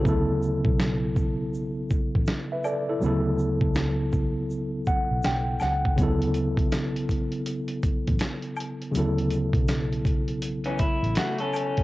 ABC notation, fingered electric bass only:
X:1
M:4/4
L:1/16
Q:"Swing 16ths" 1/4=81
K:Amix
V:1 name="Fingered electric bass" clef=bass
D,,3 B,,,8 A,,, z4 | D,,3 C,,8 B,,, B,,,2 C,,2 | D,,3 B,,,8 A,,, z4 | D,,3 B,,,8 A,,, z4 |]